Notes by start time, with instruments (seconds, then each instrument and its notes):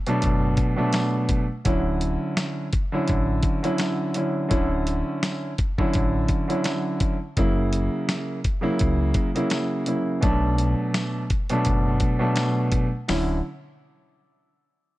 0.07 grand piano B2 F#3 A3 D4, closed hi-hat
0.22 sub bass F#1, kick, closed hi-hat
0.57 kick, closed hi-hat
0.76 grand piano B2 F#3 A3 D4
0.93 snare, closed hi-hat, tambourine
1.29 kick, closed hi-hat
1.65 sub bass D1, grand piano D3 F#3 C#4 E4, kick, closed hi-hat
2.01 closed hi-hat
2.37 snare, closed hi-hat, tambourine
2.73 kick, closed hi-hat
2.92 grand piano D3 F#3 C#4 E4
3.08 sub bass A1, kick, closed hi-hat
3.43 kick, closed hi-hat
3.62 grand piano D3 F#3 C#4 E4, closed hi-hat
3.78 snare, closed hi-hat, tambourine
4.14 grand piano D3 F#3 C#4 E4, closed hi-hat
4.49 sub bass D1, grand piano D3 F#3 C#4 E4, kick, closed hi-hat
4.87 closed hi-hat
5.23 snare, closed hi-hat, tambourine
5.58 kick, closed hi-hat
5.78 grand piano D3 F#3 C#4 E4, kick
5.94 sub bass A1, kick, closed hi-hat
6.28 kick, closed hi-hat
6.48 grand piano D3 F#3 C#4 E4, closed hi-hat
6.64 snare, closed hi-hat, tambourine
7.00 kick, closed hi-hat
7.36 sub bass F#1, grand piano C#3 F#3 A#3 E4, kick, closed hi-hat
7.73 closed hi-hat
8.09 snare, closed hi-hat, tambourine
8.44 kick, closed hi-hat
8.61 grand piano C#3 F#3 A#3 E4
8.79 sub bass C#2, kick, closed hi-hat
9.14 kick, closed hi-hat
9.35 grand piano C#3 F#3 A#3 E4, closed hi-hat
9.50 snare, closed hi-hat, tambourine
9.86 grand piano C#3 F#3 A#3 E4, closed hi-hat
10.21 sub bass B1, grand piano B2 F#3 A3 D4, kick, closed hi-hat
10.58 closed hi-hat
10.94 snare, closed hi-hat, tambourine
11.30 kick, closed hi-hat
11.49 grand piano B2 F#3 A3 D4, closed hi-hat
11.65 sub bass F#1, kick, closed hi-hat
12.00 kick, closed hi-hat
12.19 grand piano B2 F#3 A3 D4
12.36 snare, closed hi-hat, tambourine
12.72 kick, closed hi-hat
13.08 sub bass D1, grand piano D3 F#3 C#4 E4, snare, open hi-hat, tambourine